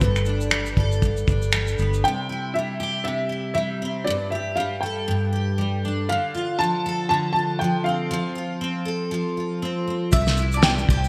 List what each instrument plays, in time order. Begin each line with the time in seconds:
Already playing: steel-string acoustic guitar G3
0.00 fingered electric bass G1, steel-string acoustic guitar G2 A4, upright piano B4, kick, shaker
0.16 finger snap, shaker
0.25 steel-string acoustic guitar D4, shaker
0.41 shaker
0.51 steel-string acoustic guitar G3, finger snap, shaker
0.66 shaker
0.77 fingered electric bass G1, steel-string acoustic guitar A4, kick
0.92 shaker
1.02 steel-string acoustic guitar G2, kick, shaker
1.17 shaker
1.28 fingered electric bass G1, steel-string acoustic guitar D4, kick, shaker
1.42 shaker
1.52 steel-string acoustic guitar G3, finger snap, shaker
1.67 shaker
1.78 fingered electric bass G1, steel-string acoustic guitar B3, shaker
1.94 shaker
2.04 steel-string acoustic guitar C3, upright piano G5
2.29 steel-string acoustic guitar E4
2.54 steel-string acoustic guitar G3, upright piano E5
2.80 steel-string acoustic guitar G4
3.04 steel-string acoustic guitar C3, upright piano E5
3.29 steel-string acoustic guitar E4
3.54 steel-string acoustic guitar G3, upright piano E5
3.82 steel-string acoustic guitar C4
4.04 steel-string acoustic guitar G2, upright piano D5
4.30 steel-string acoustic guitar G4, upright piano E5
4.56 steel-string acoustic guitar G3, upright piano F5
4.81 steel-string acoustic guitar A4, upright piano G5
5.08 steel-string acoustic guitar G2
5.33 steel-string acoustic guitar G4
5.58 steel-string acoustic guitar G3
5.85 steel-string acoustic guitar D4
6.09 steel-string acoustic guitar D3, upright piano F5
6.35 steel-string acoustic guitar F4
6.59 steel-string acoustic guitar F3, upright piano A5
6.86 steel-string acoustic guitar A4
7.09 steel-string acoustic guitar D3, upright piano A5
7.33 steel-string acoustic guitar F4, upright piano A5
7.59 steel-string acoustic guitar F3, upright piano G5
7.84 steel-string acoustic guitar C4, upright piano F5
8.11 steel-string acoustic guitar F3
8.35 steel-string acoustic guitar F4
8.61 steel-string acoustic guitar C4
8.85 steel-string acoustic guitar A4
9.11 steel-string acoustic guitar F3
9.37 steel-string acoustic guitar F4
9.62 steel-string acoustic guitar C4
9.88 steel-string acoustic guitar C4
10.12 fingered electric bass C2, steel-string acoustic guitar C3, upright piano E5, mandolin E5, kick, shaker
10.27 snare, shaker
10.37 steel-string acoustic guitar E4, shaker
10.52 mandolin D5, shaker
10.57 upright piano A5
10.62 steel-string acoustic guitar G3, upright piano G5, snare, shaker
10.78 shaker
10.89 fingered electric bass C2, steel-string acoustic guitar G4, mandolin C5, kick
11.04 shaker